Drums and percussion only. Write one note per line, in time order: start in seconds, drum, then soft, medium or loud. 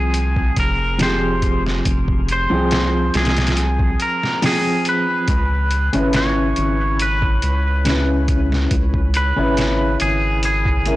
0.14 closed hi-hat medium
0.36 kick medium
0.56 kick medium
0.56 closed hi-hat medium
0.99 snare loud
0.99 closed hi-hat medium
1.42 kick medium
1.42 closed hi-hat medium
1.67 snare soft
1.85 kick loud
1.85 closed hi-hat medium
2.08 kick medium
2.28 closed hi-hat medium
2.71 snare loud
2.71 closed hi-hat medium
3.14 snare medium
3.14 closed hi-hat medium
3.25 snare medium
3.25 closed hi-hat medium
3.37 snare medium
3.37 closed hi-hat medium
3.47 snare medium
3.47 closed hi-hat medium
3.57 closed hi-hat medium
3.79 kick medium
4.00 closed hi-hat medium
4.23 snare soft
4.42 snare loud
4.42 open hi-hat medium
4.85 closed hi-hat medium
5.28 kick loud
5.28 closed hi-hat medium
5.71 closed hi-hat medium
5.93 closed hi-hat soft
6.13 snare loud
6.13 closed hi-hat medium
6.56 closed hi-hat medium
6.99 closed hi-hat medium
7.22 kick medium
7.42 closed hi-hat medium
7.85 snare loud
7.85 closed hi-hat medium
8.28 kick medium
8.28 closed hi-hat medium
8.52 snare soft
8.71 kick loud
8.71 closed hi-hat medium
8.94 kick medium
9.14 closed hi-hat medium
9.57 snare loud
9.57 closed hi-hat medium
10.00 closed hi-hat medium
10.43 closed hi-hat medium
10.65 kick medium
10.86 closed hi-hat medium